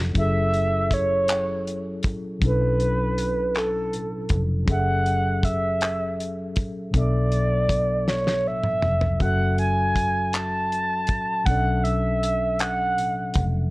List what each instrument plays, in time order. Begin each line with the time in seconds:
Already playing: fingered electric bass F1, tine electric piano F#3 C#4 D4 E4 A4
0.12 fingered electric bass F#1, tine electric piano F#3 C#4 E4, kick, closed hi-hat
0.17 tine electric piano G#4 A4, soft synth lead E5
0.53 closed hi-hat
0.91 soft synth lead C#5, kick, closed hi-hat
1.28 clap, closed hi-hat
1.67 closed hi-hat
2.03 fingered electric bass A#1, kick, closed hi-hat
2.39 fingered electric bass B1, tine electric piano B2 F#3 C#4, kick, closed hi-hat
2.43 tine electric piano D4 E4 A4, soft synth lead B4
2.80 closed hi-hat
3.18 closed hi-hat
3.55 soft synth lead A4, clap, closed hi-hat
3.93 fingered electric bass A1, closed hi-hat
4.29 fingered electric bass F1, kick, closed hi-hat
4.64 fingered electric bass F#1, tine electric piano F#3 C#4 G#4, kick, closed hi-hat
4.70 tine electric piano A4 E5, soft synth lead F#5
5.06 closed hi-hat
5.44 soft synth lead E5, kick, closed hi-hat
5.81 clap, closed hi-hat
6.20 closed hi-hat
6.56 fingered electric bass A#1, kick, closed hi-hat
6.91 fingered electric bass B1, tine electric piano B2 F#3 B3, kick, closed hi-hat
6.95 tine electric piano D4 A4 E5, soft synth lead D5
7.32 closed hi-hat
7.69 kick, closed hi-hat
8.08 soft synth lead C#5, snare
8.27 snare
8.45 fingered electric bass A1, soft synth lead E5
8.63 mid tom
8.82 fingered electric bass F1, mid tom
9.01 floor tom
9.18 fingered electric bass F#1, tine electric piano F#3 C#4 F#4, soft synth lead F#5, kick, closed hi-hat
9.23 tine electric piano A4 E5
9.58 soft synth lead G#5, closed hi-hat
9.96 kick, closed hi-hat
10.33 soft synth lead A5, clap, closed hi-hat
10.72 closed hi-hat
11.07 fingered electric bass A#1, kick, closed hi-hat
11.44 fingered electric bass B1, tine electric piano B2 F#3 C#4, soft synth lead F#5, kick, closed hi-hat
11.48 tine electric piano D4 A4 D5
11.58 tine electric piano E5
11.84 soft synth lead E5, closed hi-hat
12.23 closed hi-hat
12.59 soft synth lead F#5, clap, closed hi-hat
12.98 fingered electric bass A1, closed hi-hat
13.34 fingered electric bass F1, kick, closed hi-hat